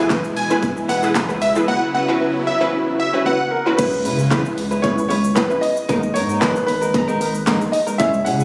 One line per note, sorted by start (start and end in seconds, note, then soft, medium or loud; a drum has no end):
0.00 1.64 B2 medium
0.00 1.66 E3 medium
0.00 1.64 G#3 medium
0.00 0.35 B3 medium
0.00 0.35 E4 medium
0.00 1.66 E4 medium
0.00 0.35 G#4 medium
0.00 0.10 B4 medium
0.00 0.35 B4 medium
0.10 0.27 B3 medium
0.10 0.24 E4 medium
0.10 0.23 G#4 loud
0.10 0.23 B4 loud
0.10 kick loud
0.10 snare medium
0.10 clap loud
0.10 closed hi-hat medium
0.10 shaker medium
0.24 0.44 E1 medium
0.24 muted clean electric guitar stroke soft
0.24 shaker medium
0.36 0.56 G#5 medium
0.36 muted clean electric guitar stroke soft
0.36 open hi-hat medium
0.36 shaker soft
0.50 0.88 B3 medium
0.50 0.63 B3 medium
0.50 0.88 E4 medium
0.50 0.63 E4 soft
0.50 0.88 G#4 medium
0.50 0.63 G#4 medium
0.50 0.63 B4 medium
0.50 0.88 B4 loud
0.50 shaker medium
0.63 kick loud
0.63 closed hi-hat medium
0.63 shaker medium
0.76 1.17 E1 medium
0.76 muted clean electric guitar stroke soft
0.76 shaker medium
0.89 1.06 B3 medium
0.89 1.03 E4 loud
0.89 1.02 G#4 medium
0.89 1.02 B4 loud
0.89 1.09 F#5 medium
0.89 open hi-hat medium
0.89 shaker medium
1.03 1.40 B3 medium
1.03 1.40 E4 medium
1.03 1.41 G#4 medium
1.03 1.41 B4 medium
1.03 muted clean electric guitar stroke soft
1.03 shaker medium
1.15 muted clean electric guitar stroke soft
1.15 kick loud
1.15 snare loud
1.15 clap loud
1.15 closed hi-hat medium
1.15 shaker medium
1.29 1.59 C#2 medium
1.29 1.40 B3 medium
1.29 1.41 E4 medium
1.29 1.41 G#4 medium
1.29 1.41 B4 medium
1.29 shaker medium
1.41 1.52 E5 medium
1.41 muted clean electric guitar stroke soft
1.41 open hi-hat medium
1.41 shaker medium
1.55 1.68 B3 medium
1.55 1.68 E4 medium
1.55 1.68 G#4 medium
1.55 1.68 B4 medium
1.55 muted clean electric guitar stroke soft
1.55 shaker medium
1.68 3.76 C#3 medium
1.68 3.76 F#3 medium
1.68 1.85 B3 medium
1.68 3.76 B3 medium
1.68 3.76 E4 medium
1.68 1.81 E4 medium
1.68 1.81 F#4 loud
1.68 1.80 B4 loud
1.68 1.88 F#5 loud
1.82 muted clean electric guitar stroke soft
1.94 2.08 B3 medium
1.94 2.08 E4 medium
1.94 2.07 F#4 medium
1.94 2.07 B4 medium
1.94 2.14 F#5 medium
2.08 2.19 B3 medium
2.08 2.46 C#4 medium
2.08 2.46 E4 medium
2.08 2.20 E4 medium
2.08 2.20 F#4 medium
2.08 2.46 F#4 medium
2.08 2.20 B4 medium
2.08 2.46 B4 medium
2.20 2.38 B3 medium
2.20 2.34 E4 medium
2.20 2.34 F#4 loud
2.20 2.33 B4 medium
2.34 muted clean electric guitar stroke soft
2.47 2.67 E5 medium
2.47 muted clean electric guitar stroke soft
2.61 2.72 B3 medium
2.61 2.98 C#4 medium
2.61 2.98 E4 medium
2.61 2.72 E4 medium
2.61 2.98 F#4 medium
2.61 2.73 F#4 medium
2.61 2.73 B4 medium
2.61 2.99 B4 loud
2.73 muted clean electric guitar stroke soft
2.87 muted clean electric guitar stroke soft
3.00 3.19 E5 medium
3.13 3.51 C#4 medium
3.13 3.51 E4 medium
3.13 3.51 F#4 medium
3.13 3.51 B4 medium
3.13 muted clean electric guitar stroke soft
3.26 3.43 B3 medium
3.26 3.39 E4 medium
3.26 3.39 F#4 loud
3.26 3.38 B4 medium
3.26 3.64 F#5 medium
3.40 muted clean electric guitar stroke soft
3.51 3.79 A#4 medium
3.51 muted clean electric guitar stroke soft
3.66 3.78 B3 soft
3.66 3.77 C#4 medium
3.66 3.77 E4 medium
3.66 3.78 E4 medium
3.66 3.79 F#4 medium
3.66 3.78 B4 medium
3.77 4.06 C#2 loud
3.77 3.96 G#3 medium
3.77 4.17 B3 medium
3.77 4.17 C#4 medium
3.77 3.92 C#4 medium
3.77 4.18 E4 medium
3.77 3.92 E4 loud
3.77 4.18 G#4 medium
3.77 4.86 B4 loud
3.77 4.18 B4 medium
3.77 3.91 B4 medium
3.77 kick loud
3.77 closed hi-hat medium
3.77 crash loud
3.77 shaker medium
3.92 muted clean electric guitar stroke soft
3.92 shaker medium
4.04 4.45 C#3 medium
4.04 4.19 G#3 medium
4.04 4.18 C#4 medium
4.04 4.18 E4 medium
4.04 4.17 B4 medium
4.04 open hi-hat medium
4.04 shaker medium
4.18 4.30 G#3 medium
4.18 4.30 C#4 medium
4.18 4.31 E4 medium
4.18 4.31 B4 medium
4.18 shaker medium
4.31 4.48 G#3 medium
4.31 4.70 B3 medium
4.31 4.70 C#4 medium
4.31 4.45 C#4 medium
4.31 4.70 E4 medium
4.31 4.44 E4 loud
4.31 4.70 G#4 medium
4.31 4.70 B4 medium
4.31 4.44 B4 loud
4.31 kick loud
4.31 snare loud
4.31 clap loud
4.31 closed hi-hat medium
4.31 shaker medium
4.45 muted clean electric guitar stroke medium
4.45 shaker medium
4.57 5.57 C#2 loud
4.57 muted clean electric guitar stroke soft
4.57 open hi-hat medium
4.57 shaker soft
4.71 4.84 G#3 soft
4.71 4.84 C#4 medium
4.71 4.84 E4 medium
4.71 4.84 B4 medium
4.71 shaker medium
4.82 5.23 B3 medium
4.82 5.23 C#4 medium
4.82 5.23 E4 medium
4.82 5.23 G#4 medium
4.82 5.23 B4 medium
4.82 5.07 C#5 loud
4.82 kick loud
4.82 closed hi-hat medium
4.82 shaker medium
4.97 muted clean electric guitar stroke soft
4.97 shaker medium
5.09 5.27 G#3 medium
5.09 5.24 C#4 medium
5.09 5.23 E4 loud
5.09 5.23 B4 medium
5.09 5.37 C#5 loud
5.09 open hi-hat medium
5.09 shaker medium
5.24 muted clean electric guitar stroke soft
5.24 shaker medium
5.35 5.75 B3 medium
5.35 5.75 C#4 medium
5.35 5.75 E4 medium
5.35 5.75 G#4 medium
5.35 5.60 B4 medium
5.35 5.76 B4 medium
5.35 muted clean electric guitar stroke soft
5.35 kick loud
5.35 snare loud
5.35 clap loud
5.35 closed hi-hat medium
5.35 shaker medium
5.50 5.61 G#3 medium
5.50 5.62 C#4 medium
5.50 5.62 E4 medium
5.50 5.62 B4 medium
5.50 shaker medium
5.61 6.16 D#5 loud
5.61 muted clean electric guitar stroke soft
5.61 open hi-hat medium
5.61 shaker medium
5.77 muted clean electric guitar stroke soft
5.77 shaker medium
5.89 6.17 G#1 loud
5.89 6.06 G#3 loud
5.89 6.28 A#3 medium
5.89 6.28 B3 medium
5.89 6.03 B3 medium
5.89 6.28 D#4 medium
5.89 6.02 D#4 medium
5.89 6.28 G#4 medium
5.89 6.28 A#4 medium
5.89 6.02 A#4 loud
5.89 kick loud
5.89 closed hi-hat medium
5.89 shaker medium
6.03 muted clean electric guitar stroke soft
6.03 shaker medium
6.14 6.55 G#2 medium
6.14 6.29 G#3 medium
6.14 6.29 B3 medium
6.14 6.28 D#4 medium
6.14 6.28 A#4 medium
6.14 6.42 C#5 loud
6.14 open hi-hat medium
6.14 shaker medium
6.29 6.40 G#3 medium
6.29 6.41 B3 medium
6.29 6.41 D#4 medium
6.29 6.42 A#4 medium
6.29 shaker medium
6.40 6.59 G#3 medium
6.40 6.81 A#3 medium
6.40 6.81 B3 medium
6.40 6.55 B3 loud
6.40 6.81 D#4 medium
6.40 6.55 D#4 loud
6.40 6.81 G#4 medium
6.40 6.81 A#4 medium
6.40 6.54 A#4 loud
6.40 6.65 B4 loud
6.40 kick loud
6.40 snare loud
6.40 clap loud
6.40 closed hi-hat medium
6.40 shaker medium
6.55 muted clean electric guitar stroke soft
6.55 shaker medium
6.67 7.68 G#1 loud
6.67 7.42 B4 loud
6.67 muted clean electric guitar stroke soft
6.67 open hi-hat medium
6.67 shaker soft
6.82 6.93 G#3 soft
6.82 6.93 B3 medium
6.82 6.94 D#4 medium
6.82 6.94 A#4 medium
6.82 shaker medium
6.94 7.33 G#3 medium
6.94 7.33 B3 medium
6.94 7.33 D#4 medium
6.94 7.33 G#4 medium
6.94 7.33 A#5 medium
6.94 muted clean electric guitar stroke soft
6.94 kick loud
6.94 closed hi-hat medium
6.94 shaker medium
7.08 7.19 G#3 medium
7.08 7.20 B3 medium
7.08 7.20 D#4 medium
7.08 7.20 A#4 medium
7.08 shaker medium
7.20 7.38 G#3 medium
7.20 7.34 B3 medium
7.20 7.34 D#4 medium
7.20 7.33 A#4 loud
7.20 open hi-hat medium
7.20 shaker medium
7.34 muted clean electric guitar stroke medium
7.34 shaker medium
7.46 7.64 G#3 medium
7.46 7.86 A#3 medium
7.46 7.86 B3 medium
7.46 7.60 B3 medium
7.46 7.86 D#4 medium
7.46 7.60 D#4 medium
7.46 7.86 G#4 medium
7.46 7.86 A#4 medium
7.46 7.59 A#4 loud
7.46 kick loud
7.46 snare loud
7.46 clap loud
7.46 closed hi-hat medium
7.46 shaker medium
7.61 muted clean electric guitar stroke medium
7.61 shaker medium
7.72 7.78 D#5 loud
7.72 muted clean electric guitar stroke soft
7.72 open hi-hat medium
7.72 shaker medium
7.87 7.98 G#3 medium
7.87 7.99 B3 medium
7.87 8.00 D#4 medium
7.87 7.99 A#4 medium
7.87 shaker medium
7.98 8.28 C#2 loud
7.98 8.17 G#3 medium
7.98 8.38 G#3 medium
7.98 8.39 C#4 medium
7.98 8.13 C#4 loud
7.98 8.39 E4 medium
7.98 8.13 E4 loud
7.98 8.39 G#4 medium
7.98 8.12 G#4 loud
7.98 8.39 C#5 medium
7.98 8.26 E5 loud
7.98 kick loud
7.98 closed hi-hat medium
7.98 shaker medium
8.13 muted clean electric guitar stroke medium
8.13 shaker medium
8.25 8.44 C#3 medium
8.25 8.40 G#3 medium
8.25 8.39 C#4 medium
8.25 8.39 E4 medium
8.25 8.38 G#4 medium
8.25 8.44 F#5 loud
8.25 open hi-hat medium
8.25 shaker medium
8.39 8.44 G#3 medium
8.39 8.44 C#4 medium
8.39 8.44 E4 medium
8.39 8.44 G#4 medium
8.39 shaker medium